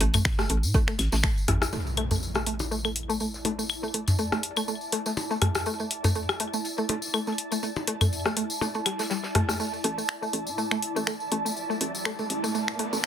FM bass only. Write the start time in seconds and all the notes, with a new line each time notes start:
0.01 A1
0.50 A1
0.63 A2
0.99 A1
1.13 A1
1.48 A1
9.84 A1
10.33 A1
10.47 A2
10.83 A1
10.96 A1
11.32 A1
11.81 A1
12.30 A1
12.44 A2
12.79 A1
12.93 A1